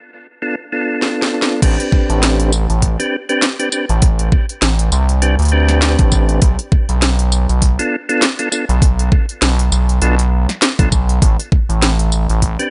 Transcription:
0.42 B3 D4 F4 A4
0.72 B3 D4 F4 A4
1.02 snare
1.22 snare
1.42 snare
1.62 A1 C4 D4 G4 B4, kick, closed hi-hat, crash
1.80 closed hi-hat
1.92 kick
2.10 A1, closed hi-hat
2.23 snare, closed hi-hat
2.40 closed hi-hat
2.52 tambourine
2.70 A1, closed hi-hat
2.82 kick, closed hi-hat
3.00 C4 D4 G4 B4, closed hi-hat
3.29 C4 D4 G4 B4, closed hi-hat
3.42 snare, closed hi-hat
3.59 C4 D4 G4 B4, closed hi-hat
3.72 C4 D4 G4 B4, tambourine
3.89 A1, closed hi-hat
4.02 kick, closed hi-hat
4.19 closed hi-hat
4.32 kick
4.49 closed hi-hat
4.62 A1, snare, closed hi-hat
4.79 closed hi-hat
4.92 C2, tambourine
5.09 closed hi-hat
5.22 C4 D4 G4 B4, closed hi-hat
5.39 D2, closed hi-hat
5.42 closed hi-hat
5.45 closed hi-hat
5.48 C4 D4 G4 B4, closed hi-hat
5.69 snare, closed hi-hat
5.82 snare, closed hi-hat
5.99 A1, kick, closed hi-hat
6.12 kick, tambourine
6.29 closed hi-hat
6.42 B1, kick, closed hi-hat
6.59 closed hi-hat
6.72 kick
6.89 B1, closed hi-hat
7.02 snare, closed hi-hat
7.19 closed hi-hat
7.32 tambourine
7.49 B1, closed hi-hat
7.62 kick, closed hi-hat
7.79 B3 D4 F4 A4, closed hi-hat
8.09 B3 D4 F4 A4, closed hi-hat
8.22 snare, closed hi-hat
8.39 B3 D4 F4 A4, closed hi-hat
8.52 B3 D4 F4 A4, tambourine
8.69 B1, closed hi-hat
8.82 kick, closed hi-hat
8.99 closed hi-hat
9.12 kick
9.29 closed hi-hat
9.42 B1, snare, closed hi-hat
9.59 closed hi-hat
9.72 B1, tambourine
9.89 closed hi-hat
10.02 B1 B3 D4 F4 A4, closed hi-hat
10.19 closed hi-hat
10.49 snare, closed hi-hat
10.62 snare, closed hi-hat
10.79 B1 B3 D4 F4 A4, kick, closed hi-hat
10.92 kick, tambourine
11.09 closed hi-hat
11.22 A1, kick, closed hi-hat
11.40 closed hi-hat
11.52 kick
11.69 A1, closed hi-hat
11.82 snare, closed hi-hat
11.99 closed hi-hat
12.12 tambourine
12.29 A1, closed hi-hat
12.42 kick, closed hi-hat
12.59 C4 D4 G4 B4, closed hi-hat

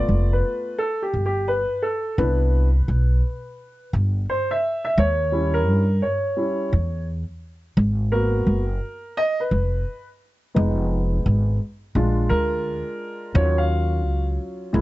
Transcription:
Already playing: A3 B3 F4 D5
0.08 F1
0.33 B4
0.78 A4
1.02 G4
1.14 G1
1.26 G4
1.48 B4
1.82 A4
2.18 C2 B3 D4 E4 B4
2.88 B1
3.93 G1
4.30 C5
4.51 E5
4.85 E5
4.98 D#2 C#5
5.32 G3 C#4 E4
5.54 A#4
5.67 G2
6.02 C#5
6.36 G3 C#4 E4
6.73 E2
7.77 G#1
8.11 A#3 B3 F#4 A#4
8.47 F#1
9.17 D#5
9.40 B4
9.51 F1
10.54 F1 G#3 B3 D#4
11.26 G#1
11.95 A#1 G#3 D4 F4
12.29 D2 A#4
13.34 D#2 F#3 C#4 F4 C#5
13.58 F5
14.05 C#2
14.73 C2 G#3 A#3 E4

